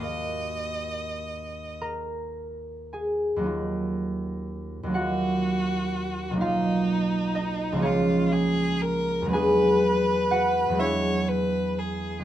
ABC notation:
X:1
M:6/8
L:1/8
Q:3/8=40
K:Ebm
V:1 name="Violin"
e3 z3 | z3 G3 | ^D3 F A B | =B3 d B ^G |]
V:2 name="Harp"
z3 [Bb]2 [Aa]- | [Aa]3 [Gg]3 | [^E^e]2 [^D^d] [_D_d]3 | [^G^g]2 [^F^f] [=E=e]3 |]
V:3 name="Harp"
[E,,B,GBef]6 | [E,,G,B,EF]3 [E,,G,B,EF]3 | [=B,,,^F,^A,^D]3 [_D,,=F,_B,E]3 | [=E,,^F,^G,=B,=D]3 [E,,F,G,B,D]3 |]